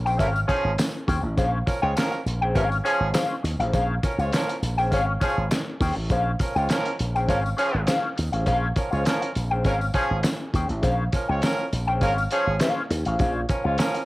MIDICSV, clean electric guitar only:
0, 0, Header, 1, 3, 480
1, 0, Start_track
1, 0, Tempo, 591133
1, 1115, Time_signature, 4, 2, 24, 8
1, 11409, End_track
2, 0, Start_track
2, 0, Title_t, "Clean electric guitar"
2, 0, Program_c, 0, 27
2, 41, Note_on_c, 0, 79, 74
2, 47, Note_on_c, 0, 72, 82
2, 52, Note_on_c, 0, 68, 69
2, 54, Note_on_c, 0, 61, 72
2, 135, Note_off_c, 0, 61, 0
2, 141, Note_off_c, 0, 68, 0
2, 145, Note_on_c, 0, 61, 85
2, 147, Note_off_c, 0, 72, 0
2, 151, Note_on_c, 0, 68, 85
2, 156, Note_off_c, 0, 79, 0
2, 156, Note_on_c, 0, 72, 84
2, 159, Note_on_c, 0, 77, 84
2, 267, Note_off_c, 0, 77, 0
2, 274, Note_off_c, 0, 72, 0
2, 278, Note_off_c, 0, 68, 0
2, 316, Note_off_c, 0, 61, 0
2, 384, Note_on_c, 0, 61, 65
2, 390, Note_on_c, 0, 68, 71
2, 397, Note_on_c, 0, 72, 78
2, 402, Note_on_c, 0, 77, 68
2, 511, Note_off_c, 0, 77, 0
2, 516, Note_off_c, 0, 72, 0
2, 520, Note_off_c, 0, 68, 0
2, 521, Note_off_c, 0, 61, 0
2, 867, Note_on_c, 0, 61, 62
2, 871, Note_on_c, 0, 68, 68
2, 878, Note_on_c, 0, 72, 69
2, 879, Note_on_c, 0, 79, 65
2, 994, Note_off_c, 0, 72, 0
2, 994, Note_off_c, 0, 79, 0
2, 997, Note_off_c, 0, 68, 0
2, 1002, Note_off_c, 0, 61, 0
2, 1112, Note_on_c, 0, 61, 97
2, 1117, Note_on_c, 0, 68, 87
2, 1122, Note_on_c, 0, 72, 90
2, 1126, Note_on_c, 0, 77, 103
2, 1276, Note_off_c, 0, 61, 0
2, 1279, Note_off_c, 0, 68, 0
2, 1281, Note_off_c, 0, 72, 0
2, 1283, Note_off_c, 0, 77, 0
2, 1479, Note_on_c, 0, 79, 70
2, 1486, Note_on_c, 0, 72, 57
2, 1489, Note_on_c, 0, 68, 63
2, 1494, Note_on_c, 0, 61, 47
2, 1586, Note_off_c, 0, 61, 0
2, 1592, Note_off_c, 0, 68, 0
2, 1593, Note_off_c, 0, 72, 0
2, 1597, Note_off_c, 0, 79, 0
2, 1959, Note_on_c, 0, 79, 86
2, 1965, Note_on_c, 0, 72, 81
2, 1970, Note_on_c, 0, 68, 82
2, 1973, Note_on_c, 0, 61, 66
2, 2061, Note_off_c, 0, 61, 0
2, 2067, Note_off_c, 0, 68, 0
2, 2071, Note_on_c, 0, 61, 88
2, 2072, Note_off_c, 0, 72, 0
2, 2077, Note_on_c, 0, 68, 95
2, 2082, Note_off_c, 0, 79, 0
2, 2082, Note_on_c, 0, 72, 97
2, 2085, Note_on_c, 0, 77, 98
2, 2183, Note_off_c, 0, 77, 0
2, 2191, Note_off_c, 0, 72, 0
2, 2196, Note_off_c, 0, 68, 0
2, 2239, Note_off_c, 0, 61, 0
2, 2303, Note_on_c, 0, 61, 59
2, 2306, Note_on_c, 0, 68, 68
2, 2313, Note_on_c, 0, 72, 73
2, 2318, Note_on_c, 0, 77, 70
2, 2423, Note_off_c, 0, 77, 0
2, 2429, Note_off_c, 0, 72, 0
2, 2434, Note_off_c, 0, 68, 0
2, 2439, Note_off_c, 0, 61, 0
2, 2545, Note_on_c, 0, 61, 83
2, 2549, Note_on_c, 0, 68, 81
2, 2556, Note_on_c, 0, 72, 89
2, 2559, Note_on_c, 0, 77, 83
2, 2713, Note_off_c, 0, 61, 0
2, 2714, Note_off_c, 0, 68, 0
2, 2718, Note_off_c, 0, 72, 0
2, 2720, Note_off_c, 0, 77, 0
2, 2920, Note_on_c, 0, 77, 71
2, 2923, Note_on_c, 0, 72, 72
2, 2931, Note_on_c, 0, 68, 58
2, 2934, Note_on_c, 0, 61, 54
2, 3017, Note_off_c, 0, 61, 0
2, 3024, Note_off_c, 0, 68, 0
2, 3027, Note_on_c, 0, 61, 77
2, 3029, Note_off_c, 0, 72, 0
2, 3032, Note_off_c, 0, 77, 0
2, 3033, Note_on_c, 0, 68, 87
2, 3039, Note_on_c, 0, 72, 91
2, 3042, Note_on_c, 0, 77, 96
2, 3194, Note_off_c, 0, 61, 0
2, 3197, Note_off_c, 0, 68, 0
2, 3199, Note_off_c, 0, 72, 0
2, 3201, Note_off_c, 0, 77, 0
2, 3403, Note_on_c, 0, 77, 61
2, 3409, Note_on_c, 0, 72, 58
2, 3411, Note_on_c, 0, 68, 61
2, 3417, Note_on_c, 0, 61, 52
2, 3500, Note_off_c, 0, 61, 0
2, 3505, Note_off_c, 0, 68, 0
2, 3507, Note_off_c, 0, 72, 0
2, 3511, Note_off_c, 0, 77, 0
2, 3875, Note_on_c, 0, 79, 82
2, 3882, Note_on_c, 0, 72, 78
2, 3889, Note_on_c, 0, 68, 68
2, 3890, Note_on_c, 0, 61, 72
2, 3979, Note_off_c, 0, 61, 0
2, 3988, Note_on_c, 0, 61, 98
2, 3989, Note_off_c, 0, 68, 0
2, 3994, Note_off_c, 0, 72, 0
2, 3999, Note_on_c, 0, 68, 95
2, 4003, Note_off_c, 0, 79, 0
2, 4003, Note_on_c, 0, 72, 98
2, 4006, Note_on_c, 0, 77, 103
2, 4104, Note_off_c, 0, 77, 0
2, 4109, Note_off_c, 0, 72, 0
2, 4115, Note_off_c, 0, 68, 0
2, 4155, Note_off_c, 0, 61, 0
2, 4224, Note_on_c, 0, 61, 67
2, 4227, Note_on_c, 0, 68, 62
2, 4233, Note_on_c, 0, 72, 68
2, 4239, Note_on_c, 0, 77, 67
2, 4346, Note_off_c, 0, 77, 0
2, 4352, Note_off_c, 0, 72, 0
2, 4360, Note_off_c, 0, 61, 0
2, 4361, Note_off_c, 0, 68, 0
2, 4709, Note_on_c, 0, 61, 68
2, 4712, Note_on_c, 0, 68, 80
2, 4720, Note_on_c, 0, 72, 80
2, 4723, Note_on_c, 0, 79, 76
2, 4838, Note_off_c, 0, 72, 0
2, 4838, Note_off_c, 0, 79, 0
2, 4841, Note_off_c, 0, 68, 0
2, 4843, Note_off_c, 0, 61, 0
2, 4956, Note_on_c, 0, 61, 84
2, 4961, Note_on_c, 0, 68, 83
2, 4965, Note_on_c, 0, 72, 97
2, 4973, Note_on_c, 0, 77, 94
2, 5119, Note_off_c, 0, 61, 0
2, 5121, Note_off_c, 0, 68, 0
2, 5123, Note_off_c, 0, 72, 0
2, 5127, Note_off_c, 0, 77, 0
2, 5322, Note_on_c, 0, 79, 56
2, 5328, Note_on_c, 0, 72, 64
2, 5333, Note_on_c, 0, 68, 52
2, 5336, Note_on_c, 0, 61, 48
2, 5427, Note_off_c, 0, 61, 0
2, 5434, Note_off_c, 0, 68, 0
2, 5436, Note_off_c, 0, 72, 0
2, 5439, Note_off_c, 0, 79, 0
2, 5804, Note_on_c, 0, 79, 71
2, 5810, Note_on_c, 0, 72, 75
2, 5811, Note_on_c, 0, 68, 64
2, 5819, Note_on_c, 0, 61, 62
2, 5902, Note_off_c, 0, 61, 0
2, 5905, Note_off_c, 0, 68, 0
2, 5909, Note_off_c, 0, 72, 0
2, 5912, Note_on_c, 0, 61, 78
2, 5915, Note_on_c, 0, 68, 83
2, 5918, Note_on_c, 0, 72, 96
2, 5921, Note_off_c, 0, 79, 0
2, 5924, Note_on_c, 0, 77, 89
2, 6029, Note_off_c, 0, 77, 0
2, 6034, Note_off_c, 0, 72, 0
2, 6038, Note_off_c, 0, 68, 0
2, 6077, Note_off_c, 0, 61, 0
2, 6145, Note_on_c, 0, 61, 76
2, 6150, Note_on_c, 0, 68, 76
2, 6155, Note_on_c, 0, 72, 74
2, 6160, Note_on_c, 0, 77, 75
2, 6269, Note_off_c, 0, 77, 0
2, 6274, Note_off_c, 0, 72, 0
2, 6277, Note_off_c, 0, 68, 0
2, 6281, Note_off_c, 0, 61, 0
2, 6390, Note_on_c, 0, 61, 70
2, 6394, Note_on_c, 0, 68, 77
2, 6399, Note_on_c, 0, 72, 79
2, 6404, Note_on_c, 0, 77, 98
2, 6557, Note_off_c, 0, 61, 0
2, 6559, Note_off_c, 0, 68, 0
2, 6561, Note_off_c, 0, 72, 0
2, 6563, Note_off_c, 0, 77, 0
2, 6758, Note_on_c, 0, 77, 63
2, 6764, Note_on_c, 0, 72, 60
2, 6768, Note_on_c, 0, 68, 56
2, 6772, Note_on_c, 0, 61, 46
2, 6858, Note_off_c, 0, 61, 0
2, 6864, Note_off_c, 0, 68, 0
2, 6868, Note_off_c, 0, 72, 0
2, 6868, Note_on_c, 0, 61, 88
2, 6873, Note_off_c, 0, 77, 0
2, 6874, Note_on_c, 0, 68, 94
2, 6878, Note_on_c, 0, 72, 88
2, 6883, Note_on_c, 0, 77, 106
2, 7036, Note_off_c, 0, 61, 0
2, 7039, Note_off_c, 0, 68, 0
2, 7041, Note_off_c, 0, 72, 0
2, 7043, Note_off_c, 0, 77, 0
2, 7233, Note_on_c, 0, 77, 62
2, 7238, Note_on_c, 0, 72, 74
2, 7245, Note_on_c, 0, 68, 59
2, 7250, Note_on_c, 0, 61, 58
2, 7342, Note_off_c, 0, 61, 0
2, 7346, Note_off_c, 0, 68, 0
2, 7348, Note_off_c, 0, 72, 0
2, 7352, Note_off_c, 0, 77, 0
2, 7717, Note_on_c, 0, 79, 74
2, 7725, Note_on_c, 0, 72, 77
2, 7730, Note_on_c, 0, 68, 66
2, 7732, Note_on_c, 0, 61, 64
2, 7821, Note_off_c, 0, 61, 0
2, 7826, Note_off_c, 0, 68, 0
2, 7831, Note_on_c, 0, 61, 85
2, 7833, Note_off_c, 0, 72, 0
2, 7835, Note_on_c, 0, 68, 91
2, 7843, Note_off_c, 0, 79, 0
2, 7843, Note_on_c, 0, 72, 90
2, 7846, Note_on_c, 0, 77, 88
2, 7954, Note_off_c, 0, 77, 0
2, 7958, Note_off_c, 0, 72, 0
2, 7964, Note_off_c, 0, 68, 0
2, 7998, Note_off_c, 0, 61, 0
2, 8072, Note_on_c, 0, 61, 77
2, 8078, Note_on_c, 0, 68, 69
2, 8082, Note_on_c, 0, 72, 87
2, 8084, Note_on_c, 0, 77, 76
2, 8197, Note_off_c, 0, 77, 0
2, 8202, Note_off_c, 0, 72, 0
2, 8206, Note_off_c, 0, 61, 0
2, 8209, Note_off_c, 0, 68, 0
2, 8558, Note_on_c, 0, 61, 68
2, 8563, Note_on_c, 0, 68, 73
2, 8567, Note_on_c, 0, 72, 70
2, 8572, Note_on_c, 0, 79, 69
2, 8677, Note_off_c, 0, 72, 0
2, 8678, Note_off_c, 0, 79, 0
2, 8684, Note_off_c, 0, 68, 0
2, 8689, Note_off_c, 0, 61, 0
2, 8787, Note_on_c, 0, 61, 86
2, 8789, Note_on_c, 0, 68, 88
2, 8798, Note_on_c, 0, 72, 100
2, 8803, Note_on_c, 0, 77, 102
2, 8956, Note_off_c, 0, 61, 0
2, 8958, Note_off_c, 0, 68, 0
2, 8962, Note_off_c, 0, 72, 0
2, 8964, Note_off_c, 0, 77, 0
2, 9163, Note_on_c, 0, 79, 60
2, 9165, Note_on_c, 0, 72, 63
2, 9172, Note_on_c, 0, 68, 56
2, 9175, Note_on_c, 0, 61, 53
2, 9265, Note_off_c, 0, 61, 0
2, 9272, Note_off_c, 0, 68, 0
2, 9276, Note_off_c, 0, 72, 0
2, 9282, Note_off_c, 0, 79, 0
2, 9637, Note_on_c, 0, 79, 82
2, 9643, Note_on_c, 0, 72, 74
2, 9650, Note_on_c, 0, 68, 66
2, 9652, Note_on_c, 0, 61, 69
2, 9741, Note_off_c, 0, 61, 0
2, 9750, Note_off_c, 0, 68, 0
2, 9750, Note_on_c, 0, 61, 94
2, 9753, Note_off_c, 0, 72, 0
2, 9760, Note_on_c, 0, 68, 89
2, 9763, Note_off_c, 0, 79, 0
2, 9763, Note_on_c, 0, 72, 99
2, 9766, Note_on_c, 0, 77, 97
2, 9877, Note_off_c, 0, 77, 0
2, 9881, Note_off_c, 0, 72, 0
2, 9885, Note_off_c, 0, 68, 0
2, 9919, Note_off_c, 0, 61, 0
2, 9999, Note_on_c, 0, 61, 78
2, 10005, Note_on_c, 0, 68, 78
2, 10009, Note_on_c, 0, 72, 79
2, 10015, Note_on_c, 0, 77, 77
2, 10118, Note_off_c, 0, 77, 0
2, 10123, Note_off_c, 0, 72, 0
2, 10131, Note_off_c, 0, 61, 0
2, 10133, Note_off_c, 0, 68, 0
2, 10234, Note_on_c, 0, 61, 86
2, 10239, Note_on_c, 0, 68, 81
2, 10243, Note_on_c, 0, 72, 101
2, 10244, Note_on_c, 0, 77, 102
2, 10403, Note_off_c, 0, 61, 0
2, 10406, Note_off_c, 0, 68, 0
2, 10408, Note_off_c, 0, 72, 0
2, 10408, Note_off_c, 0, 77, 0
2, 10606, Note_on_c, 0, 77, 62
2, 10611, Note_on_c, 0, 72, 58
2, 10618, Note_on_c, 0, 68, 50
2, 10621, Note_on_c, 0, 61, 60
2, 10703, Note_off_c, 0, 61, 0
2, 10707, Note_off_c, 0, 68, 0
2, 10712, Note_off_c, 0, 72, 0
2, 10713, Note_on_c, 0, 61, 82
2, 10717, Note_off_c, 0, 77, 0
2, 10717, Note_on_c, 0, 68, 86
2, 10722, Note_on_c, 0, 72, 96
2, 10727, Note_on_c, 0, 77, 86
2, 10880, Note_off_c, 0, 61, 0
2, 10882, Note_off_c, 0, 68, 0
2, 10885, Note_off_c, 0, 72, 0
2, 10887, Note_off_c, 0, 77, 0
2, 11077, Note_on_c, 0, 77, 59
2, 11081, Note_on_c, 0, 72, 58
2, 11091, Note_on_c, 0, 68, 53
2, 11095, Note_on_c, 0, 61, 46
2, 11182, Note_off_c, 0, 61, 0
2, 11187, Note_off_c, 0, 68, 0
2, 11191, Note_off_c, 0, 72, 0
2, 11193, Note_off_c, 0, 77, 0
2, 11409, End_track
3, 0, Start_track
3, 0, Title_t, "Muted clean electric guitar strokes"
3, 277, Note_on_c, 9, 29, 43
3, 358, Note_off_c, 9, 29, 0
3, 521, Note_on_c, 9, 29, 52
3, 602, Note_off_c, 9, 29, 0
3, 637, Note_on_c, 9, 29, 41
3, 718, Note_off_c, 9, 29, 0
3, 997, Note_on_c, 9, 29, 49
3, 1078, Note_off_c, 9, 29, 0
3, 1352, Note_on_c, 9, 29, 56
3, 1433, Note_off_c, 9, 29, 0
3, 1596, Note_on_c, 9, 29, 42
3, 1677, Note_off_c, 9, 29, 0
3, 1718, Note_on_c, 9, 29, 49
3, 1799, Note_off_c, 9, 29, 0
3, 2193, Note_on_c, 9, 29, 45
3, 2274, Note_off_c, 9, 29, 0
3, 2433, Note_on_c, 9, 29, 44
3, 2514, Note_off_c, 9, 29, 0
3, 2785, Note_on_c, 9, 29, 40
3, 2866, Note_off_c, 9, 29, 0
3, 3268, Note_on_c, 9, 29, 49
3, 3349, Note_off_c, 9, 29, 0
3, 3510, Note_on_c, 9, 29, 42
3, 3591, Note_off_c, 9, 29, 0
3, 3644, Note_on_c, 9, 29, 46
3, 3726, Note_off_c, 9, 29, 0
3, 4113, Note_on_c, 9, 29, 56
3, 4195, Note_off_c, 9, 29, 0
3, 4356, Note_on_c, 9, 29, 46
3, 4437, Note_off_c, 9, 29, 0
3, 4467, Note_on_c, 9, 29, 47
3, 4548, Note_off_c, 9, 29, 0
3, 4841, Note_on_c, 9, 29, 40
3, 4922, Note_off_c, 9, 29, 0
3, 5197, Note_on_c, 9, 29, 45
3, 5278, Note_off_c, 9, 29, 0
3, 5437, Note_on_c, 9, 29, 45
3, 5518, Note_off_c, 9, 29, 0
3, 5571, Note_on_c, 9, 29, 50
3, 5652, Note_off_c, 9, 29, 0
3, 6039, Note_on_c, 9, 29, 44
3, 6120, Note_off_c, 9, 29, 0
3, 6279, Note_on_c, 9, 29, 58
3, 6360, Note_off_c, 9, 29, 0
3, 6628, Note_on_c, 9, 29, 44
3, 6709, Note_off_c, 9, 29, 0
3, 7113, Note_on_c, 9, 29, 41
3, 7194, Note_off_c, 9, 29, 0
3, 7352, Note_on_c, 9, 29, 39
3, 7433, Note_off_c, 9, 29, 0
3, 7482, Note_on_c, 9, 29, 45
3, 7563, Note_off_c, 9, 29, 0
3, 7964, Note_on_c, 9, 29, 48
3, 8045, Note_off_c, 9, 29, 0
3, 8207, Note_on_c, 9, 29, 51
3, 8288, Note_off_c, 9, 29, 0
3, 8319, Note_on_c, 9, 29, 40
3, 8400, Note_off_c, 9, 29, 0
3, 8682, Note_on_c, 9, 29, 47
3, 8763, Note_off_c, 9, 29, 0
3, 9033, Note_on_c, 9, 29, 43
3, 9114, Note_off_c, 9, 29, 0
3, 9275, Note_on_c, 9, 29, 49
3, 9356, Note_off_c, 9, 29, 0
3, 9402, Note_on_c, 9, 29, 41
3, 9483, Note_off_c, 9, 29, 0
3, 9887, Note_on_c, 9, 29, 54
3, 9968, Note_off_c, 9, 29, 0
3, 10127, Note_on_c, 9, 29, 54
3, 10209, Note_off_c, 9, 29, 0
3, 10477, Note_on_c, 9, 29, 44
3, 10559, Note_off_c, 9, 29, 0
3, 10953, Note_on_c, 9, 29, 47
3, 11034, Note_off_c, 9, 29, 0
3, 11192, Note_on_c, 9, 29, 42
3, 11273, Note_off_c, 9, 29, 0
3, 11322, Note_on_c, 9, 29, 57
3, 11403, Note_off_c, 9, 29, 0
3, 11409, End_track
0, 0, End_of_file